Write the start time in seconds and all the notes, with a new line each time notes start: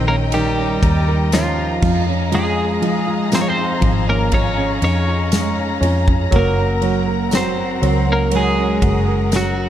Already playing: A#1 D#3 G4 A#4 D#5 G5 A#5
0.08 A#3 C#4 A#4
0.32 D#3 G3 G4 A#4, ride
0.58 C#4
0.83 D#2 G4, kick, ride
1.08 A#4
1.32 F3 C#4 F4, snare, ride, tambourine
1.58 G4
1.82 F2 F3 G#4 F5, kick, snare, crash
2.08 C#4
2.32 F2 F3 G#3 F4 G#4, ride
2.82 F3 D#4, ride
3.07 F4
3.32 F3 G#3 C4 C5, snare, ride, tambourine
3.41 C#5
3.48 C4 C5
3.57 D#4
3.81 G#1 F3 F4, kick, ride
4.08 A#3 C#4 A#4
4.32 F2 C#4 F4 C#5, kick, ride
4.57 C#4
4.82 F2 C#4 D#4 C#5, ride
5.08 F4
5.32 G#3, snare, ride, tambourine
5.58 D#4
5.81 F2 C#4 F4, ride
6.08 C#4, kick
6.31 F#1 F#3 A#4 F#5, kick, ride
6.36 A#3 A#4
6.58 C#4
6.82 F#3 F#4, ride
7.08 A#4
7.31 F#3 C4, snare, ride, tambourine
7.37 C5
7.57 F#4
7.82 C#2 F#3 A#4, ride
8.08 A#3 C#4
8.13 A#4
8.31 F#3 G#3 A#4, ride
8.37 G#4
8.58 C#4
8.82 F#1 F#4, kick, ride
9.08 A#4
9.32 F#3 C#4, snare, ride, tambourine
9.37 F#4
9.58 F#4